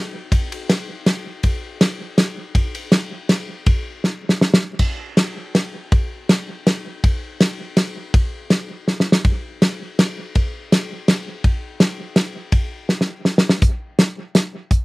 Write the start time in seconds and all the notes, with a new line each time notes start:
0.32 kick, ride
0.52 ride
0.69 snare, ride
1.06 snare, ride
1.43 kick, ride
1.81 snare, ride
2.18 snare, ride
2.55 kick, ride
2.75 ride
2.92 snare, ride
3.29 snare, ride
3.66 kick, ride
4.04 snare
4.29 snare
4.41 snare
4.54 snare
4.79 kick, crash
5.17 snare, ride
5.55 snare, ride
5.92 kick, ride
6.29 snare, ride
6.67 snare, ride
7.04 kick, ride
7.41 snare, ride
7.77 snare, ride
8.14 kick, ride
8.50 snare, ride
8.88 snare
9.00 snare
9.12 snare
9.25 kick, ride
9.62 snare, ride
9.99 snare, ride
10.35 kick, ride
10.72 snare, ride
11.08 snare, ride
11.44 kick, ride
11.80 snare, ride
12.16 snare, ride
12.52 kick, ride
12.89 snare
13.01 snare
13.25 snare
13.38 snare
13.49 snare
13.62 kick, closed hi-hat
13.99 snare, closed hi-hat
14.35 snare, closed hi-hat
14.71 kick, closed hi-hat